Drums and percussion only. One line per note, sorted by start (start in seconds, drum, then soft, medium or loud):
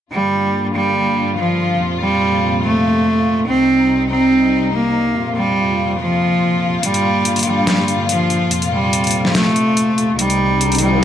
6.83 closed hi-hat medium
6.94 closed hi-hat soft
7.25 closed hi-hat medium
7.36 closed hi-hat soft
7.39 closed hi-hat medium
7.43 closed hi-hat medium
7.67 snare loud
7.67 closed hi-hat medium
7.88 closed hi-hat soft
8.09 closed hi-hat medium
8.30 closed hi-hat soft
8.51 closed hi-hat medium
8.62 closed hi-hat soft
8.93 closed hi-hat medium
9.04 closed hi-hat soft
9.07 closed hi-hat medium
9.11 closed hi-hat medium
9.25 snare soft
9.35 snare loud
9.35 closed hi-hat medium
9.56 closed hi-hat soft
9.77 closed hi-hat medium
9.98 closed hi-hat soft
10.19 closed hi-hat medium
10.30 closed hi-hat soft
10.61 closed hi-hat medium
10.72 closed hi-hat soft
10.75 closed hi-hat medium
10.78 closed hi-hat medium